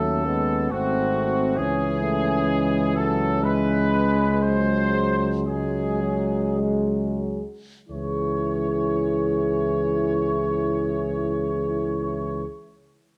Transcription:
0.00 0.67 D#2 soft
0.00 0.25 F#3 soft
0.00 0.28 A3 soft
0.00 0.69 C#4 soft
0.00 0.70 A4 medium
0.27 0.70 G#3 soft
0.27 0.74 B3 soft
0.70 1.60 G#1 soft
0.70 1.59 A3 soft
0.70 1.56 C4 soft
0.70 1.60 C4 medium
0.70 1.57 F#4 medium
1.56 7.46 C#2 soft
1.56 4.12 E3 medium
1.56 4.25 C#4 soft
1.56 2.02 C#4 medium
1.56 2.94 G#4 medium
2.03 2.50 A3 soft
2.48 2.96 G#3 soft
2.95 3.45 F#3 soft
2.95 3.43 A4 medium
3.43 5.14 G#3 medium
3.43 4.42 B4 medium
4.42 5.42 F#3 soft
4.42 5.44 G#3 soft
4.42 5.29 C5 medium
5.46 7.41 F#3 soft
5.46 6.03 G#3 soft
5.46 7.42 G#3 soft
5.46 6.57 G#4 soft
6.01 6.62 F#3 soft
6.60 7.24 G#3 soft
7.89 12.44 C#2 soft
7.89 12.43 E3 soft
7.89 12.44 E4 soft
7.89 12.44 G#4 soft
7.89 12.44 C#5 soft

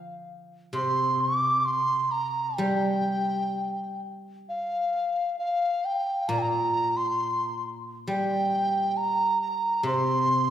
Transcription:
0.00 1.67 F3 medium
0.73 3.55 C3 medium
0.73 1.22 C6 medium
1.21 1.67 D6 medium
1.65 2.13 C6 medium
2.11 2.58 A#5 medium
2.57 5.39 G3 medium
2.57 4.01 G5 medium
4.49 5.36 F5 medium
5.39 5.86 F5 medium
5.85 6.30 G5 medium
6.28 8.97 A#2 medium
6.28 6.40 A#5 medium
6.39 6.44 G5 medium
6.39 6.98 A#5 loud
6.97 7.65 C6 medium
8.07 10.50 G3 medium
8.07 8.98 G5 medium
8.97 9.41 A#5 medium
9.42 9.83 A#5 medium
9.83 10.50 C3 medium
9.83 10.50 C6 loud

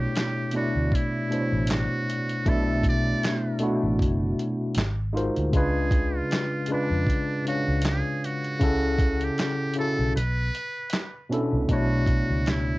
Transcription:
0.00 0.40 B2 loud
0.00 0.40 A3 loud
0.00 0.41 D4 medium
0.00 0.41 E4 medium
0.00 0.54 G4 medium
0.00 0.45 C#5 loud
0.00 2.49 E5 medium
0.15 snare loud
0.15 clap loud
0.15 closed hi-hat medium
0.51 1.22 B2 medium
0.51 1.22 A3 medium
0.51 1.23 D4 medium
0.51 closed hi-hat medium
0.56 1.23 E4 medium
0.56 0.96 F#4 medium
0.56 1.24 D5 medium
0.75 0.90 D2 medium
0.92 1.70 E4 medium
0.92 kick medium
0.92 closed hi-hat medium
1.29 2.33 B2 medium
1.29 2.33 A3 medium
1.29 2.34 D4 medium
1.29 2.34 E4 medium
1.29 closed hi-hat medium
1.33 1.39 C5 medium
1.40 2.38 C#5 medium
1.52 1.85 A1 medium
1.67 snare loud
1.67 clap loud
1.67 closed hi-hat medium
1.71 2.50 F#4 medium
2.10 closed hi-hat medium
2.29 closed hi-hat soft
2.45 3.12 B1 medium
2.45 3.49 B2 loud
2.45 3.49 A3 medium
2.45 3.49 D4 medium
2.45 3.50 E4 medium
2.45 2.86 A4 loud
2.45 3.50 E5 loud
2.45 kick loud
2.45 closed hi-hat medium
2.84 kick loud
2.84 closed hi-hat medium
2.89 3.59 D5 loud
3.23 snare loud
3.23 clap medium
3.23 closed hi-hat medium
3.59 4.75 B2 medium
3.59 4.76 A3 medium
3.59 4.77 D4 medium
3.59 4.77 E4 medium
3.59 closed hi-hat medium
3.63 4.78 F#4 loud
3.83 3.98 A1 medium
3.99 4.33 F#1 loud
3.99 kick medium
3.99 closed hi-hat medium
4.39 closed hi-hat medium
4.75 5.28 G#1 medium
4.75 snare loud
4.75 clap medium
4.75 closed hi-hat medium
5.13 5.48 G#3 medium
5.13 5.49 D#4 medium
5.13 5.49 F4 medium
5.13 5.50 F#4 medium
5.13 5.50 A#4 medium
5.17 5.50 C5 medium
5.17 closed hi-hat medium
5.36 5.52 D2 medium
5.36 closed hi-hat soft
5.52 6.20 C#2 loud
5.52 6.56 C#3 medium
5.52 6.56 G#3 medium
5.52 6.57 D4 medium
5.52 6.58 F4 medium
5.52 kick loud
5.52 closed hi-hat medium
5.57 6.18 G#4 medium
5.57 6.58 B4 loud
5.91 kick loud
5.91 closed hi-hat medium
6.16 6.70 F4 medium
6.31 snare loud
6.31 clap medium
6.31 closed hi-hat medium
6.66 7.37 C#3 medium
6.66 7.38 G#3 medium
6.66 closed hi-hat medium
6.70 7.38 D4 medium
6.70 7.43 D4 loud
6.70 7.39 F4 medium
6.70 7.39 B4 medium
6.91 7.05 F2 medium
7.07 kick medium
7.07 closed hi-hat medium
7.45 8.48 C#3 medium
7.45 8.49 G#3 medium
7.45 8.49 D4 medium
7.45 7.83 F#4 loud
7.45 8.50 C#5 medium
7.45 8.50 F5 medium
7.45 closed hi-hat medium
7.68 8.01 C#2 medium
7.82 snare loud
7.82 clap loud
7.82 closed hi-hat medium
7.87 8.27 G#4 loud
8.24 9.26 F#4 loud
8.24 closed hi-hat medium
8.45 closed hi-hat soft
8.59 9.28 C#2 loud
8.59 9.63 C#3 loud
8.59 9.64 C#4 medium
8.59 9.64 E4 medium
8.59 9.65 F#5 medium
8.59 kick loud
8.59 closed hi-hat medium
8.64 9.65 A4 loud
8.99 kick loud
8.99 closed hi-hat medium
9.21 9.78 G4 loud
9.21 closed hi-hat soft
9.38 snare loud
9.38 clap loud
9.38 closed hi-hat medium
9.74 10.15 C#3 medium
9.74 10.15 C#4 medium
9.74 closed hi-hat medium
9.78 10.16 E4 medium
9.78 10.16 F#4 medium
9.78 10.14 A4 loud
9.78 10.17 A4 medium
9.99 10.13 B1 medium
10.16 10.49 B1 loud
10.16 11.27 B4 loud
10.16 closed hi-hat medium
10.55 closed hi-hat medium
10.90 snare loud
10.90 clap medium
10.90 closed hi-hat medium
11.29 11.64 B2 medium
11.29 11.65 B3 medium
11.29 11.65 C#4 medium
11.29 11.66 D4 medium
11.29 11.66 E4 medium
11.29 closed hi-hat medium
11.34 11.66 A4 medium
11.53 11.67 C2 medium
11.69 12.21 B1 medium
11.69 12.72 B2 medium
11.69 12.73 A3 medium
11.69 12.73 D4 medium
11.69 12.73 E4 medium
11.69 12.50 F#4 loud
11.69 kick medium
11.69 closed hi-hat medium
11.73 12.74 C#5 loud
12.06 kick loud
12.06 closed hi-hat medium
12.30 12.79 C#2 medium
12.46 12.79 E4 medium
12.46 snare loud
12.46 clap medium
12.46 closed hi-hat medium

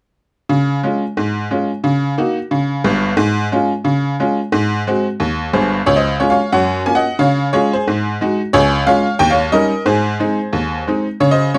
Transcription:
0.49 0.78 C#3 medium
0.83 1.02 G#3 soft
0.83 1.02 C#4 soft
0.83 1.02 F4 soft
1.17 1.46 G#2 medium
1.51 1.69 G#3 soft
1.51 1.70 C#4 soft
1.51 1.69 F4 soft
1.84 2.12 C#3 medium
2.18 2.36 A#3 soft
2.18 2.36 D#4 soft
2.18 2.37 F#4 soft
2.51 2.80 C#3 medium
2.84 3.11 G1 medium
2.84 3.11 G2 medium
3.17 3.46 G#2 medium
3.52 3.70 G#3 soft
3.52 3.71 C#4 soft
3.52 3.71 F4 medium
3.85 4.13 C#3 medium
4.20 4.38 G#3 soft
4.20 4.38 C#4 soft
4.20 4.38 F4 soft
4.52 4.81 G#2 medium
4.87 5.05 G#3 soft
4.87 5.05 C4 soft
4.87 5.06 F#4 soft
5.20 5.48 D#2 medium
5.53 5.80 G1 medium
5.53 5.80 G2 medium
5.53 5.85 G#4 soft
5.53 5.81 C5 medium
5.86 6.15 C#2 medium
5.86 5.96 C#5 medium
5.96 6.18 C5 soft
5.96 6.16 D#5 medium
6.20 6.38 G#3 soft
6.20 6.38 C#4 soft
6.20 6.39 F4 soft
6.20 6.30 C#5 medium
6.30 6.52 C#5 medium
6.30 6.50 F5 medium
6.52 6.81 F#2 medium
6.52 6.84 C#5 soft
6.52 6.81 F#5 medium
6.86 7.04 A#3 soft
6.86 7.04 C#4 soft
6.86 7.05 F4 soft
6.86 6.96 G#5 medium
6.95 7.18 D#5 soft
6.95 7.15 F#5 medium
7.19 7.47 C#3 medium
7.19 7.51 C#5 medium
7.19 7.48 F5 medium
7.53 7.72 G#3 soft
7.53 7.72 C#4 soft
7.53 7.72 F4 soft
7.53 7.72 G#4 medium
7.53 7.70 C#5 medium
7.73 8.05 G#4 soft
7.73 8.02 C5 medium
7.88 8.15 G#2 medium
8.21 8.39 G#3 soft
8.21 8.39 D#4 soft
8.21 8.40 F#4 soft
8.53 8.82 C#2 medium
8.53 8.85 G#4 medium
8.53 8.81 C#5 loud
8.87 9.05 G#3 soft
8.87 9.05 C#4 medium
8.87 9.05 F4 medium
8.87 9.18 C#5 medium
8.87 9.15 F5 loud
9.19 9.48 D#2 medium
9.19 9.29 G5 medium
9.30 9.52 C#5 medium
9.30 9.50 F5 medium
9.52 9.71 G3 soft
9.52 9.71 C#4 soft
9.52 9.71 D#4 soft
9.52 9.84 A#4 medium
9.52 9.81 D#5 medium
9.86 10.14 G#2 medium
9.86 11.03 G#4 medium
9.86 10.88 C5 medium
10.20 10.38 G#3 soft
10.20 10.38 C4 soft
10.20 10.38 D#4 soft
10.53 10.81 D#2 medium
10.87 11.05 G#3 soft
10.87 11.06 C4 soft
10.87 11.06 D#4 soft
11.20 11.48 C#3 medium
11.20 11.30 C#5 medium
11.31 11.53 C5 soft
11.31 11.50 D#5 medium
11.54 11.58 G#3 soft
11.54 11.58 C#4 soft
11.54 11.58 F4 soft
11.54 11.58 C#5 medium

